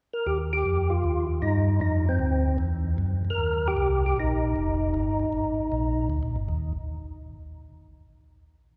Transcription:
0.13 0.27 A#4 medium
0.26 0.64 D#2 medium
0.26 0.38 G4 medium
0.53 0.93 G4 medium
0.65 1.03 F2 medium
0.90 1.27 F4 medium
1.04 1.42 D#2 medium
1.42 1.81 G2 medium
1.42 1.80 D#4 medium
1.80 2.19 F2 medium
1.80 2.06 D#4 medium
2.09 2.57 C4 medium
2.19 2.58 D2 medium
2.58 2.97 E2 medium
2.98 3.23 F#2 medium
3.25 3.31 F#2 soft
3.30 3.68 A#4 loud
3.38 3.76 D#2 medium
3.68 4.05 G4 medium
3.77 4.15 C2 medium
4.06 4.18 G4 medium
4.16 4.54 A#1 medium
4.16 6.08 D#4 medium
4.56 4.93 F1 medium
4.94 5.18 G1 medium
5.19 5.26 G1 soft
5.33 5.70 G#1 medium
5.72 6.09 A#1 medium
6.10 6.23 D2 medium
6.23 6.36 A#1 soft
6.36 6.48 G1 medium
6.48 6.73 D#2 medium

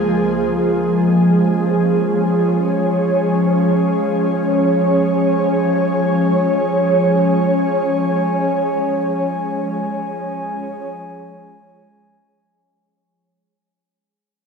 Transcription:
0.00 0.48 C#2 medium
0.00 12.48 F3 medium
0.00 12.46 G#3 medium
0.00 2.19 A#3 medium
0.00 12.47 G#4 medium
0.00 0.47 C5 medium
0.46 12.49 G#5 medium
0.78 12.47 C#4 medium
1.39 12.47 C#5 medium

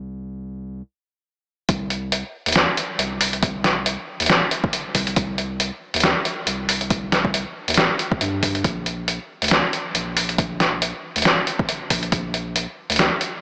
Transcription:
0.00 0.82 C2 medium
1.69 2.23 C2 loud
1.69 kick loud
1.69 closed hi-hat medium
1.90 closed hi-hat medium
2.12 closed hi-hat medium
2.46 2.66 D#2 medium
2.46 closed hi-hat medium
2.48 closed hi-hat medium
2.52 snare loud
2.52 closed hi-hat medium
2.56 closed hi-hat medium
2.77 closed hi-hat medium
2.99 3.97 C2 medium
2.99 closed hi-hat medium
3.21 open hi-hat loud
3.33 closed hi-hat soft
3.43 kick loud
3.43 closed hi-hat medium
3.64 snare medium
3.64 closed hi-hat medium
3.86 closed hi-hat medium
4.20 4.29 D#2 medium
4.20 closed hi-hat medium
4.22 closed hi-hat medium
4.26 snare loud
4.26 closed hi-hat medium
4.30 4.41 A#1 medium
4.30 closed hi-hat medium
4.51 closed hi-hat medium
4.64 kick loud
4.73 closed hi-hat medium
4.95 5.15 C2 loud
4.95 kick medium
4.95 open hi-hat loud
5.07 closed hi-hat soft
5.16 5.71 C2 loud
5.16 kick loud
5.16 closed hi-hat medium
5.38 closed hi-hat medium
5.60 closed hi-hat medium
5.94 6.14 D#2 medium
5.94 closed hi-hat medium
5.96 closed hi-hat medium
6.00 snare loud
6.00 closed hi-hat medium
6.04 closed hi-hat medium
6.25 closed hi-hat medium
6.47 7.45 C2 medium
6.47 closed hi-hat medium
6.69 open hi-hat loud
6.81 closed hi-hat soft
6.90 kick loud
6.90 closed hi-hat medium
7.12 snare medium
7.12 closed hi-hat medium
7.25 kick medium
7.34 closed hi-hat medium
7.68 7.77 D#2 medium
7.68 closed hi-hat soft
7.70 closed hi-hat medium
7.74 7.89 A#1 loud
7.74 snare loud
7.74 closed hi-hat medium
7.77 closed hi-hat medium
7.99 closed hi-hat medium
8.12 kick loud
8.21 8.63 G2 loud
8.21 closed hi-hat medium
8.43 kick medium
8.43 open hi-hat medium
8.55 closed hi-hat soft
8.64 9.19 A#1 loud
8.64 kick loud
8.64 closed hi-hat medium
8.86 closed hi-hat soft
9.08 closed hi-hat medium
9.42 9.62 D2 medium
9.42 closed hi-hat soft
9.44 closed hi-hat medium
9.48 snare loud
9.48 closed hi-hat medium
9.51 closed hi-hat medium
9.73 closed hi-hat medium
9.95 10.93 A#1 medium
9.95 closed hi-hat medium
10.17 open hi-hat medium
10.29 closed hi-hat soft
10.38 kick loud
10.38 closed hi-hat medium
10.60 snare medium
10.60 closed hi-hat medium
10.82 closed hi-hat medium
11.16 11.25 D2 medium
11.16 closed hi-hat soft
11.18 closed hi-hat medium
11.22 snare loud
11.22 closed hi-hat medium
11.25 11.37 G#1 loud
11.25 closed hi-hat medium
11.47 closed hi-hat medium
11.59 kick loud
11.69 closed hi-hat medium
11.90 12.11 A#1 loud
11.90 kick medium
11.90 open hi-hat loud
12.03 closed hi-hat soft
12.12 12.67 A#1 loud
12.12 kick loud
12.12 closed hi-hat medium
12.34 closed hi-hat medium
12.56 closed hi-hat medium
12.90 13.10 D2 medium
12.90 closed hi-hat soft
12.92 closed hi-hat medium
12.96 snare loud
12.96 closed hi-hat medium
12.99 closed hi-hat medium
13.21 closed hi-hat medium

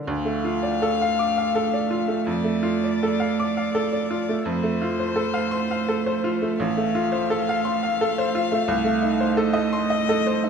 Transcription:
0.00 0.10 D4 soft
0.00 0.11 A#4 medium
0.00 0.10 D5 medium
0.00 0.10 D6 medium
0.06 2.25 D2 medium
0.06 4.41 A3 medium
0.06 2.25 F5 medium
0.25 0.56 A3 medium
0.44 0.75 F4 medium
0.63 0.94 D5 medium
0.82 1.12 A4 medium
1.01 1.31 F5 medium
1.19 1.49 D6 medium
1.38 1.67 F5 medium
1.55 1.85 A4 medium
1.73 2.03 D5 medium
1.91 2.21 F4 medium
2.08 2.28 A3 medium
2.27 4.40 F2 medium
2.27 4.48 D5 medium
2.44 2.75 A3 medium
2.63 2.93 F4 medium
2.84 3.13 D5 medium
3.03 3.32 A4 medium
3.20 3.49 F5 medium
3.40 3.68 D6 medium
3.57 3.86 F5 medium
3.75 4.03 A4 medium
3.93 4.21 D5 medium
4.11 4.39 F4 medium
4.29 4.46 A3 medium
4.45 6.55 F2 medium
4.45 8.64 A3 medium
4.45 6.58 C5 loud
4.63 4.91 A3 medium
4.82 5.09 F4 medium
5.00 5.28 C5 medium
5.16 5.45 A4 medium
5.34 5.63 F5 medium
5.51 5.81 C6 medium
5.71 5.99 F5 medium
5.89 6.17 A4 medium
6.06 6.34 C5 medium
6.24 6.52 F4 medium
6.42 6.59 A3 medium
6.58 8.65 A1 medium
6.58 9.39 F5 medium
6.77 7.05 A3 medium
6.95 7.23 F4 medium
7.12 7.40 C5 medium
7.30 7.58 A4 medium
7.49 7.76 F5 medium
7.65 7.93 C6 medium
7.83 8.10 F5 medium
8.01 8.28 A4 medium
8.18 8.45 C5 medium
8.35 8.62 F4 medium
8.52 8.69 A3 medium
8.68 10.49 C2 medium
8.68 10.49 A3 medium
8.85 9.13 A3 medium
9.03 9.31 D#4 medium
9.20 9.48 C5 medium
9.37 9.65 A4 medium
9.37 10.49 D#5 loud
9.53 9.82 D#5 medium
9.73 10.01 C6 medium
9.90 10.19 D#5 medium
10.09 10.38 A4 medium
10.27 10.49 C5 medium
10.44 10.49 D#4 medium

